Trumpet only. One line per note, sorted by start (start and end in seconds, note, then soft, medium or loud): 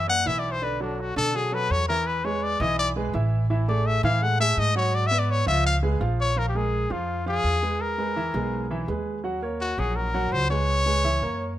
0.09 0.29 F#5 loud
0.27 0.40 E5 loud
0.39 0.53 D5 medium
0.51 0.65 C5 loud
0.64 0.81 B4 medium
0.82 1.02 D4 medium
1.00 1.17 F#4 medium
1.17 1.37 A4 loud
1.36 1.55 G#4 medium
1.54 1.73 B4 loud
1.71 1.88 C#5 loud
1.88 2.08 A#4 loud
2.07 2.27 B4 medium
2.25 2.45 C#5 medium
2.43 2.62 D5 loud
2.61 2.78 D#5 loud
2.79 2.90 D5 medium
3.69 3.88 D5 medium
3.87 4.04 E5 medium
4.04 4.24 F5 medium
4.23 4.40 F#5 medium
4.40 4.61 E5 loud
4.59 4.76 D#5 loud
4.77 4.96 C#5 loud
4.95 5.08 D5 medium
5.07 5.20 E5 loud
5.19 5.32 D5 medium
5.31 5.47 C#5 loud
5.48 5.64 E5 loud
5.66 5.77 F5 medium
6.21 6.40 C#5 loud
6.38 6.48 A#4 medium
6.49 6.58 G4 medium
6.56 6.93 G#4 medium
6.92 7.27 F4 medium
7.28 7.83 G#4 loud
7.81 8.89 A#4 medium
9.61 9.80 F#4 medium
9.79 9.98 G#4 medium
9.96 10.34 A#4 medium
10.32 10.50 C5 loud
10.51 11.54 C#5 loud